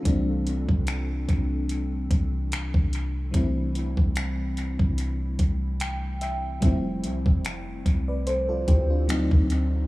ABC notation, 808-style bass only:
X:1
M:4/4
L:1/16
Q:"Swing 16ths" 1/4=73
K:C
V:1 name="808-style bass" clef=bass
C,,3 C,,3 C,,4 C,,3 C,,3 | C,,3 C,,4 C,,3 C,,6 | F,,,2 C,, F,,,3 C,,4 D,,3 D,,3 |]